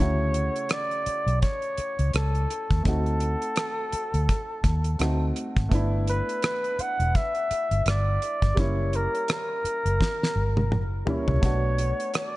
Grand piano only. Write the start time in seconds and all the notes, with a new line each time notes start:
Already playing: A3
0.00 C#3 E4 F#4
2.83 A3 C4 D#4
2.89 F#4
4.99 A3 C4 D#4 F#4
5.69 A3 B3 D4
5.75 E4
8.54 G3 A#3 C#4
8.59 E4
11.05 G3 A#3 C#4 E4
11.40 A3 B3 D4
11.45 F#4